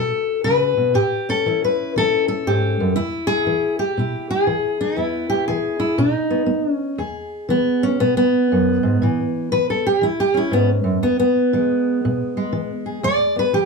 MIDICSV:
0, 0, Header, 1, 2, 480
1, 0, Start_track
1, 0, Key_signature, 4, "major"
1, 0, Tempo, 503778
1, 903, Time_signature, 4, 2, 24, 8
1, 13009, End_track
2, 0, Start_track
2, 0, Title_t, "Steel-string acoustic guitar"
2, 0, Program_c, 0, 25
2, 0, Note_on_c, 0, 47, 62
2, 0, Note_on_c, 0, 66, 44
2, 0, Note_on_c, 0, 69, 103
2, 392, Note_off_c, 0, 47, 0
2, 418, Note_off_c, 0, 69, 0
2, 422, Note_on_c, 0, 71, 106
2, 437, Note_on_c, 0, 49, 56
2, 731, Note_off_c, 0, 49, 0
2, 735, Note_on_c, 0, 47, 47
2, 889, Note_off_c, 0, 66, 0
2, 897, Note_on_c, 0, 45, 73
2, 903, Note_off_c, 0, 71, 0
2, 904, Note_off_c, 0, 47, 0
2, 905, Note_on_c, 0, 67, 98
2, 1225, Note_off_c, 0, 67, 0
2, 1228, Note_on_c, 0, 61, 46
2, 1236, Note_on_c, 0, 69, 104
2, 1348, Note_off_c, 0, 45, 0
2, 1392, Note_on_c, 0, 52, 63
2, 1409, Note_on_c, 0, 64, 46
2, 1551, Note_off_c, 0, 69, 0
2, 1567, Note_on_c, 0, 71, 90
2, 1836, Note_off_c, 0, 52, 0
2, 1867, Note_on_c, 0, 52, 67
2, 1877, Note_off_c, 0, 71, 0
2, 1883, Note_on_c, 0, 69, 109
2, 2164, Note_off_c, 0, 69, 0
2, 2176, Note_on_c, 0, 69, 84
2, 2314, Note_off_c, 0, 52, 0
2, 2351, Note_off_c, 0, 64, 0
2, 2352, Note_on_c, 0, 44, 54
2, 2355, Note_on_c, 0, 67, 86
2, 2662, Note_off_c, 0, 44, 0
2, 2670, Note_on_c, 0, 42, 61
2, 2814, Note_off_c, 0, 61, 0
2, 2814, Note_off_c, 0, 69, 0
2, 2818, Note_on_c, 0, 64, 94
2, 2829, Note_off_c, 0, 42, 0
2, 2831, Note_off_c, 0, 67, 0
2, 2833, Note_on_c, 0, 40, 64
2, 3116, Note_on_c, 0, 68, 103
2, 3277, Note_off_c, 0, 40, 0
2, 3302, Note_on_c, 0, 52, 59
2, 3608, Note_off_c, 0, 68, 0
2, 3612, Note_on_c, 0, 67, 95
2, 3615, Note_off_c, 0, 64, 0
2, 3752, Note_off_c, 0, 52, 0
2, 3787, Note_on_c, 0, 47, 62
2, 3802, Note_on_c, 0, 64, 46
2, 4097, Note_off_c, 0, 67, 0
2, 4102, Note_on_c, 0, 68, 89
2, 4235, Note_off_c, 0, 47, 0
2, 4258, Note_on_c, 0, 52, 60
2, 4568, Note_off_c, 0, 64, 0
2, 4580, Note_on_c, 0, 63, 83
2, 4711, Note_off_c, 0, 52, 0
2, 4730, Note_on_c, 0, 40, 73
2, 4735, Note_off_c, 0, 68, 0
2, 4739, Note_on_c, 0, 59, 43
2, 4770, Note_off_c, 0, 63, 0
2, 4770, Note_on_c, 0, 64, 83
2, 5042, Note_off_c, 0, 59, 0
2, 5046, Note_on_c, 0, 67, 91
2, 5187, Note_off_c, 0, 40, 0
2, 5215, Note_off_c, 0, 67, 0
2, 5218, Note_on_c, 0, 68, 88
2, 5233, Note_on_c, 0, 52, 59
2, 5511, Note_off_c, 0, 64, 0
2, 5522, Note_on_c, 0, 64, 74
2, 5678, Note_off_c, 0, 52, 0
2, 5698, Note_off_c, 0, 68, 0
2, 5699, Note_on_c, 0, 47, 73
2, 5701, Note_off_c, 0, 64, 0
2, 5702, Note_on_c, 0, 63, 77
2, 6007, Note_on_c, 0, 59, 49
2, 6147, Note_off_c, 0, 59, 0
2, 6151, Note_off_c, 0, 47, 0
2, 6159, Note_on_c, 0, 59, 58
2, 6407, Note_off_c, 0, 63, 0
2, 6407, Note_on_c, 0, 61, 77
2, 6621, Note_off_c, 0, 59, 0
2, 6654, Note_on_c, 0, 40, 70
2, 6658, Note_on_c, 0, 68, 43
2, 6664, Note_off_c, 0, 61, 0
2, 7108, Note_off_c, 0, 40, 0
2, 7133, Note_on_c, 0, 52, 60
2, 7147, Note_on_c, 0, 59, 83
2, 7462, Note_on_c, 0, 61, 84
2, 7468, Note_off_c, 0, 59, 0
2, 7587, Note_off_c, 0, 52, 0
2, 7624, Note_on_c, 0, 59, 88
2, 7625, Note_off_c, 0, 61, 0
2, 7630, Note_on_c, 0, 47, 68
2, 7773, Note_off_c, 0, 59, 0
2, 7785, Note_on_c, 0, 59, 95
2, 8075, Note_off_c, 0, 47, 0
2, 8117, Note_on_c, 0, 42, 63
2, 8410, Note_off_c, 0, 42, 0
2, 8414, Note_on_c, 0, 44, 53
2, 8562, Note_off_c, 0, 68, 0
2, 8585, Note_off_c, 0, 44, 0
2, 8592, Note_on_c, 0, 45, 71
2, 8604, Note_on_c, 0, 52, 51
2, 8745, Note_off_c, 0, 59, 0
2, 9035, Note_off_c, 0, 45, 0
2, 9070, Note_on_c, 0, 71, 96
2, 9074, Note_off_c, 0, 52, 0
2, 9078, Note_on_c, 0, 52, 67
2, 9228, Note_off_c, 0, 71, 0
2, 9242, Note_on_c, 0, 69, 82
2, 9394, Note_off_c, 0, 69, 0
2, 9399, Note_on_c, 0, 67, 82
2, 9518, Note_off_c, 0, 52, 0
2, 9540, Note_on_c, 0, 52, 61
2, 9553, Note_off_c, 0, 67, 0
2, 9558, Note_on_c, 0, 64, 88
2, 9712, Note_off_c, 0, 64, 0
2, 9719, Note_on_c, 0, 67, 91
2, 9853, Note_on_c, 0, 61, 49
2, 9872, Note_off_c, 0, 67, 0
2, 9883, Note_on_c, 0, 64, 84
2, 9989, Note_off_c, 0, 52, 0
2, 10017, Note_on_c, 0, 44, 62
2, 10034, Note_off_c, 0, 64, 0
2, 10035, Note_on_c, 0, 59, 95
2, 10190, Note_off_c, 0, 59, 0
2, 10323, Note_off_c, 0, 44, 0
2, 10327, Note_on_c, 0, 42, 59
2, 10483, Note_off_c, 0, 61, 0
2, 10500, Note_off_c, 0, 42, 0
2, 10505, Note_on_c, 0, 40, 75
2, 10510, Note_on_c, 0, 59, 88
2, 10655, Note_off_c, 0, 59, 0
2, 10667, Note_on_c, 0, 59, 91
2, 10951, Note_off_c, 0, 40, 0
2, 10988, Note_on_c, 0, 52, 64
2, 10996, Note_on_c, 0, 56, 45
2, 11433, Note_off_c, 0, 52, 0
2, 11481, Note_on_c, 0, 47, 62
2, 11775, Note_off_c, 0, 56, 0
2, 11786, Note_on_c, 0, 56, 50
2, 11919, Note_off_c, 0, 47, 0
2, 11935, Note_on_c, 0, 52, 69
2, 12105, Note_off_c, 0, 59, 0
2, 12251, Note_on_c, 0, 68, 40
2, 12386, Note_off_c, 0, 52, 0
2, 12402, Note_off_c, 0, 68, 0
2, 12418, Note_on_c, 0, 40, 76
2, 12426, Note_on_c, 0, 74, 113
2, 12729, Note_on_c, 0, 59, 40
2, 12745, Note_off_c, 0, 74, 0
2, 12758, Note_on_c, 0, 71, 88
2, 12868, Note_off_c, 0, 40, 0
2, 12893, Note_on_c, 0, 52, 58
2, 12898, Note_off_c, 0, 59, 0
2, 12902, Note_on_c, 0, 67, 91
2, 12911, Note_off_c, 0, 71, 0
2, 13009, Note_off_c, 0, 52, 0
2, 13009, Note_off_c, 0, 56, 0
2, 13009, Note_off_c, 0, 67, 0
2, 13009, End_track
0, 0, End_of_file